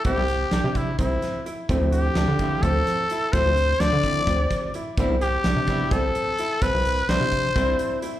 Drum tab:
HH |xxxxxxx|xxxxxxx|xxxxxxx|xxxxxxx|
SD |--o--o-|--o--o-|--o-oo-|--oo---|
BD |o--oo--|o--oo--|o--ooo-|o--oo--|

HH |xxxxxxx|
SD |--o-o--|
BD |o--oo--|